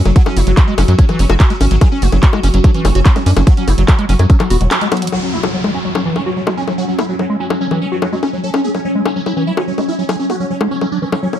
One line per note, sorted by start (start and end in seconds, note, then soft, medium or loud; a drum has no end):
0.00 5.11 F#3 medium
0.00 5.14 F#4 medium
0.06 0.13 F#1 medium
0.06 0.10 F#3 medium
0.06 0.12 F#3 medium
0.06 closed hi-hat medium
0.06 high bongo soft
0.16 0.23 F#3 medium
0.16 0.22 F#4 loud
0.16 kick loud
0.16 closed hi-hat medium
0.26 0.32 F#3 medium
0.26 0.38 C#4 medium
0.26 high bongo medium
0.37 0.44 F#1 medium
0.37 0.41 G#3 loud
0.37 0.43 E4 medium
0.37 open hi-hat loud
0.47 0.54 F#1 medium
0.47 0.52 F#3 medium
0.47 0.53 F#3 medium
0.47 closed hi-hat medium
0.57 0.60 F#3 medium
0.57 0.63 F#3 medium
0.57 kick loud
0.57 clap loud
0.57 closed hi-hat medium
0.57 high bongo soft
0.68 0.74 G#3 loud
0.78 0.85 F#1 medium
0.78 0.84 F#3 medium
0.78 0.83 C#4 loud
0.78 open hi-hat medium
0.78 high bongo medium
0.88 0.95 F#2 medium
0.88 0.93 F#3 medium
0.88 0.94 F#3 medium
0.88 closed hi-hat medium
0.99 1.06 F#3 medium
0.99 1.05 C#4 medium
0.99 kick loud
0.99 closed hi-hat medium
1.09 1.21 E3 loud
1.09 1.15 F#3 medium
1.09 closed hi-hat soft
1.09 high bongo soft
1.19 1.26 F#1 medium
1.19 1.24 G#3 loud
1.19 1.25 C#4 loud
1.19 open hi-hat loud
1.30 1.37 F#1 medium
1.30 1.36 F#3 medium
1.30 1.34 F#4 loud
1.30 closed hi-hat medium
1.30 high bongo medium
1.40 1.45 F#3 medium
1.40 1.46 F#3 medium
1.40 kick loud
1.40 clap loud
1.40 closed hi-hat medium
1.50 1.56 F#3 medium
1.50 1.53 G#3 loud
1.50 closed hi-hat soft
1.61 1.68 G#1 medium
1.61 1.65 C#4 loud
1.61 1.67 C#4 medium
1.61 open hi-hat medium
1.61 high bongo soft
1.71 1.78 G#1 medium
1.71 1.76 F#3 medium
1.71 1.77 F#3 medium
1.71 closed hi-hat medium
1.81 1.88 F#3 medium
1.81 1.87 G#4 loud
1.81 kick loud
1.81 closed hi-hat medium
1.81 high bongo medium
1.92 1.98 C#4 medium
1.92 2.04 C#4 medium
2.02 2.09 F#1 medium
2.02 2.07 G#3 loud
2.02 2.08 F#4 medium
2.02 open hi-hat medium
2.12 2.19 F#1 medium
2.12 2.17 F#3 medium
2.12 2.18 C#4 medium
2.12 closed hi-hat medium
2.12 high bongo soft
2.23 2.26 F#3 medium
2.23 2.29 C#4 medium
2.23 kick loud
2.23 clap loud
2.23 closed hi-hat medium
2.33 2.40 G#3 loud
2.33 high bongo medium
2.43 2.50 F#1 loud
2.43 2.48 C#4 loud
2.43 2.49 C#4 medium
2.43 open hi-hat medium
2.54 2.61 F#1 medium
2.54 2.58 F#3 medium
2.54 2.60 C#4 medium
2.54 closed hi-hat medium
2.64 2.71 F#3 medium
2.64 2.70 D4 medium
2.64 kick loud
2.64 closed hi-hat medium
2.64 high bongo soft
2.75 2.86 E3 loud
2.75 2.80 C#4 medium
2.75 closed hi-hat soft
2.85 2.92 F#1 medium
2.85 2.89 G#3 loud
2.85 2.91 C#4 loud
2.85 open hi-hat loud
2.85 high bongo medium
2.95 3.02 F#1 medium
2.95 3.01 C#4 medium
2.95 3.00 F#4 loud
2.95 closed hi-hat medium
3.06 3.10 F#3 medium
3.06 3.11 C#4 medium
3.06 kick loud
3.06 clap loud
3.06 closed hi-hat medium
3.16 3.19 G#3 loud
3.16 3.22 C#4 medium
3.16 closed hi-hat soft
3.16 high bongo soft
3.26 3.33 F#2 loud
3.26 3.31 C#4 loud
3.26 3.32 D4 medium
3.26 open hi-hat medium
3.37 3.44 F#1 medium
3.37 3.41 F#3 medium
3.37 3.43 C#4 medium
3.37 closed hi-hat medium
3.37 high bongo medium
3.47 3.54 F#3 medium
3.47 3.53 F#4 loud
3.47 kick loud
3.47 closed hi-hat medium
3.57 3.63 F#3 medium
3.57 3.69 C#4 medium
3.57 closed hi-hat soft
3.68 3.75 F#1 medium
3.68 3.72 G#3 loud
3.68 3.74 E4 medium
3.68 open hi-hat loud
3.68 high bongo soft
3.78 3.85 F#1 medium
3.78 3.83 F#3 medium
3.78 3.84 F#3 medium
3.78 closed hi-hat medium
3.88 3.91 F#3 medium
3.88 3.94 F#3 medium
3.88 kick loud
3.88 clap loud
3.88 closed hi-hat medium
3.88 high bongo medium
3.99 4.06 G#3 loud
3.99 closed hi-hat soft
4.09 4.16 F#1 loud
4.09 4.15 F#3 medium
4.09 4.14 C#4 loud
4.09 open hi-hat medium
4.19 4.26 F#2 medium
4.19 4.24 F#3 medium
4.19 4.25 F#3 medium
4.19 closed hi-hat medium
4.19 high bongo soft
4.30 4.37 F#3 medium
4.30 4.36 C#4 medium
4.30 kick loud
4.30 closed hi-hat medium
4.40 4.43 E3 loud
4.40 4.46 F#3 medium
4.40 clap soft
4.40 closed hi-hat soft
4.40 high bongo medium
4.50 4.57 E1 medium
4.50 4.56 B3 medium
4.50 4.57 F#4 loud
4.50 open hi-hat loud
4.61 4.68 E1 medium
4.61 4.67 F#3 medium
4.61 4.63 G#3 medium
4.61 closed hi-hat medium
4.71 4.77 F#3 medium
4.71 4.74 C#4 loud
4.71 clap loud
4.71 closed hi-hat medium
4.71 high bongo soft
4.81 4.87 F#3 medium
4.81 4.88 G#3 medium
4.81 closed hi-hat soft
4.92 5.04 F#3 medium
4.92 4.98 B3 medium
4.92 closed hi-hat medium
4.92 high bongo medium
4.97 closed hi-hat medium
5.02 5.09 E3 medium
5.02 5.08 F#3 medium
5.02 closed hi-hat medium
5.07 closed hi-hat medium
5.12 5.19 F#3 medium
5.12 11.39 F#3 medium
5.12 11.39 C#4 medium
5.12 5.18 F#4 loud
5.12 high bongo soft
5.12 downlifter medium
5.23 5.29 F#3 medium
5.23 5.35 C#4 medium
5.33 5.38 G#3 loud
5.33 5.39 E4 medium
5.43 5.49 F#3 medium
5.43 5.48 F#3 medium
5.43 high bongo medium
5.54 5.60 F#3 medium
5.54 5.57 F#3 medium
5.64 5.71 G#3 loud
5.64 high bongo soft
5.74 5.80 F#3 medium
5.74 5.79 C#4 loud
5.85 5.89 F#3 medium
5.85 5.91 F#3 medium
5.95 6.02 F#3 medium
5.95 6.01 C#4 medium
5.95 high bongo medium
6.06 6.17 E3 loud
6.06 6.11 F#3 medium
6.16 6.20 G#3 loud
6.16 6.22 C#4 medium
6.16 high bongo soft
6.26 6.32 F#3 medium
6.26 6.31 F#4 loud
6.37 6.41 F#3 medium
6.37 6.43 F#3 medium
6.47 6.53 F#3 medium
6.47 6.50 G#3 loud
6.47 high bongo medium
6.57 6.62 C#4 loud
6.57 6.63 C#4 medium
6.68 6.74 F#3 medium
6.68 6.72 F#3 medium
6.68 high bongo soft
6.78 6.85 F#3 medium
6.78 6.84 F#4 loud
6.88 6.94 F#3 medium
6.88 7.00 C#4 medium
6.99 7.03 G#3 loud
6.99 7.05 E4 medium
6.99 high bongo medium
7.09 7.14 F#3 medium
7.09 7.15 F#3 medium
7.19 7.22 F#3 medium
7.19 7.25 F#3 medium
7.19 high bongo soft
7.30 7.37 G#3 loud
7.40 7.46 F#3 medium
7.40 7.45 C#4 loud
7.50 7.55 F#3 medium
7.50 7.56 F#3 medium
7.50 high bongo medium
7.61 7.68 F#3 medium
7.61 7.67 C#4 medium
7.71 7.83 E3 loud
7.71 7.77 F#3 medium
7.71 high bongo soft
7.81 7.86 G#3 loud
7.81 7.87 C#4 medium
7.92 7.98 F#3 medium
7.92 7.96 F#4 loud
8.02 8.08 F#3 medium
8.02 8.07 F#3 medium
8.02 high bongo medium
8.12 8.18 F#3 medium
8.12 8.15 G#3 loud
8.23 8.27 C#4 loud
8.23 8.29 C#4 medium
8.23 high bongo soft
8.33 8.39 F#3 medium
8.33 8.38 F#3 medium
8.43 8.50 F#3 medium
8.43 8.49 A4 loud
8.54 8.60 C#4 medium
8.54 8.66 C#4 medium
8.54 high bongo medium
8.64 8.69 G#3 loud
8.64 8.70 G#4 medium
8.75 8.79 F#3 medium
8.75 8.80 C#4 medium
8.75 high bongo soft
8.85 8.88 F#3 medium
8.85 8.91 C#4 medium
8.95 9.02 G#3 loud
9.06 9.10 C#4 loud
9.06 9.12 C#4 medium
9.06 high bongo medium
9.16 9.20 F#3 medium
9.16 9.22 C#4 medium
9.26 9.33 F#3 medium
9.26 9.32 E4 medium
9.26 high bongo soft
9.37 9.48 E3 loud
9.37 9.43 C#4 medium
9.47 9.51 G#3 loud
9.47 9.53 E4 medium
9.57 9.63 C#4 medium
9.57 9.62 F#4 loud
9.57 high bongo medium
9.68 9.72 F#3 medium
9.68 9.74 C#4 medium
9.78 9.81 G#3 loud
9.78 9.84 C#4 medium
9.78 high bongo soft
9.88 9.93 C#4 loud
9.88 9.94 E4 medium
9.99 10.03 F#3 medium
9.99 10.05 C#4 medium
10.09 10.16 F#3 medium
10.09 10.15 G#4 loud
10.09 high bongo medium
10.19 10.31 C#4 medium
10.19 10.25 C#4 medium
10.30 10.34 G#3 loud
10.30 10.36 F#4 medium
10.30 high bongo soft
10.40 10.45 F#3 medium
10.40 10.46 C#4 medium
10.50 10.53 F#3 medium
10.50 10.56 C#4 medium
10.61 10.68 G#3 loud
10.61 high bongo medium
10.71 10.76 C#4 loud
10.71 10.77 C#4 medium
10.81 10.86 F#3 medium
10.81 10.87 C#4 medium
10.81 high bongo soft
10.92 10.99 F#3 medium
10.92 10.98 D4 medium
11.02 11.05 E3 loud
11.02 11.08 C#4 medium
11.12 11.15 F#3 medium
11.12 11.18 C#4 medium
11.12 high bongo medium
11.23 11.27 F#3 loud
11.23 11.29 C#4 medium
11.33 11.39 C#4 medium
11.33 11.36 C#4 medium
11.33 high bongo soft